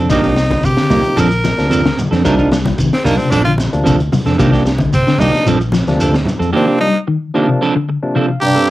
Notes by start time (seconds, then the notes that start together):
Already playing: D4 A4
0.00 C4
0.09 C2 C3 D#3 F3 A#3 D4 D#4 G4, kick, closed hi-hat, shekere
0.23 A#3 D4 G4, kick, snare, closed hi-hat, shekere
0.36 muted clean electric guitar stroke, snare, closed hi-hat, shekere
0.50 D3, muted clean electric guitar stroke, kick, snare, closed hi-hat, high conga, shekere
0.63 C3 G4, muted clean electric guitar stroke, kick, closed hi-hat, shekere
0.77 D3, snare, closed hi-hat, shekere
0.90 C2 C3 F3 A#3 D#4 G4, snare, open hi-hat, high conga, low conga, shekere
1.04 muted clean electric guitar stroke, closed hi-hat, shekere
1.16 A#1 F3 C4 D4 A4 A#4, closed hi-hat, high conga, low conga, shekere
1.31 muted clean electric guitar stroke, closed hi-hat, shekere
1.44 F3, muted clean electric guitar stroke, snare, closed hi-hat, high conga, shekere
1.58 D2 C3 F3 A#3 D4, snare, closed hi-hat, shekere
1.70 F3 C4 D4 A4, closed hi-hat, shekere
1.84 D3, muted clean electric guitar stroke, snare, closed hi-hat, high conga, shekere
1.97 muted clean electric guitar stroke, muted fingered electric bass stroke, closed hi-hat, low conga, shekere
2.11 F2 F3 C4 D4 A4, snare, closed hi-hat, high conga, shekere
2.24 C2 C3 F3 G3 A#3 D4 D#4 A#4, kick, closed hi-hat, shekere
2.37 D4 D#4 A#4, kick, shekere
2.51 G3, muted clean electric guitar stroke, snare, closed hi-hat, shekere
2.65 muted clean electric guitar stroke, kick, snare, closed hi-hat, high conga, shekere
2.78 C3 D#3, muted clean electric guitar stroke, kick, closed hi-hat, shekere
2.93 C4, snare, shekere
3.05 C2 C3 F3 G3 A#3 D4 D#4 A#4, open hi-hat, high conga, low conga, shekere
3.17 C3 C4, muted clean electric guitar stroke, shekere
3.30 A#1 F3 C4 D4 A4, snare, closed hi-hat, low conga, shekere
3.44 D3 F4, muted clean electric guitar stroke, closed hi-hat, shekere
3.58 muted clean electric guitar stroke, snare, closed hi-hat, high conga, shekere
3.73 D2 C3 F3 A#3 D4, closed hi-hat, shekere
3.84 C3 F3 C4 D4 A4, kick, closed hi-hat, shekere
3.99 muted clean electric guitar stroke, closed hi-hat, high conga, shekere
4.12 C3, muted clean electric guitar stroke, open hi-hat, low conga, shekere
4.25 F2 C4 D4 A4, snare, closed hi-hat, high conga, shekere
4.38 C2 C3 D#3 F3 A#3 D4 G4, kick, closed hi-hat, shekere
4.52 A#3 D4 G4, kick, snare, closed hi-hat, shekere
4.65 muted clean electric guitar stroke, snare, closed hi-hat, shekere
4.78 D3, muted clean electric guitar stroke, kick, closed hi-hat, high conga, shekere
4.93 C3 C4, muted clean electric guitar stroke, kick, closed hi-hat, shekere
5.07 D3, snare, closed hi-hat, shekere
5.18 C2 C3 D#3 F3 A#3 D4 D#4 G4, open hi-hat, high conga, low conga, shekere
5.34 muted clean electric guitar stroke, snare, closed hi-hat, shekere
5.46 A#1 F3 C4 D4 A4, closed hi-hat, low conga, shekere
5.61 muted clean electric guitar stroke, closed hi-hat, shekere
5.72 F3, muted clean electric guitar stroke, snare, closed hi-hat, high conga, shekere
5.87 D2 C3 F3 A#3 D4, snare, closed hi-hat, shekere
6.00 F3 D4 A4, muted clean electric guitar stroke, closed hi-hat, shekere
6.12 muted clean electric guitar stroke, snare, closed hi-hat, high conga, shekere
6.25 muted clean electric guitar stroke, closed hi-hat, low conga, shekere
6.39 F2 F3 C4 A4, closed hi-hat, shekere
6.53 C3 D#3 F3 A#3 C4 D4 G4
6.68 A#3 D4 G4
6.80 G3 D#4, muted clean electric guitar stroke
6.94 muted clean electric guitar stroke
7.07 D#3, muted clean electric guitar stroke
7.34 C3 D#3 F3 A#3 D4 G4
7.48 C3, muted clean electric guitar stroke
7.61 F3 C4 D4 A4
7.76 D3, muted clean electric guitar stroke
7.89 muted clean electric guitar stroke
8.03 C3 F3 A#3 D4
8.15 C3 F3 C4 D4 A4 F5
8.29 muted clean electric guitar stroke
8.41 G2 C3 G4 A#5, muted clean electric guitar stroke
8.45 D4
8.55 C4 D4 A4